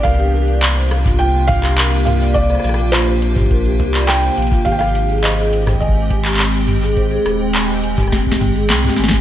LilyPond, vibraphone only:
\new Staff \with { instrumentName = "Vibraphone" } { \time 4/4 \key c \minor \tempo 4 = 104 bes'16 g'16 bes'16 d''16 f''16 c''16 f''16 f'16 f'16 r8 g'16 bes'16 g'16 bes'16 d''16 | f''16 c''16 f''16 f'16 f'16 r8 g'16 bes'16 g'16 bes'16 d''16 f''16 c''16 f''16 f'16 | g'16 r8 aes'16 c''16 aes'16 c''16 g''16 aes''16 ees''16 aes''16 g'16 g'16 r8 aes'16 | c''16 aes'16 c''16 g''16 aes''16 ees''16 aes''16 g'16 g'16 r16 g''16 aes'16 g''16 g'16 aes''16 g'16 | }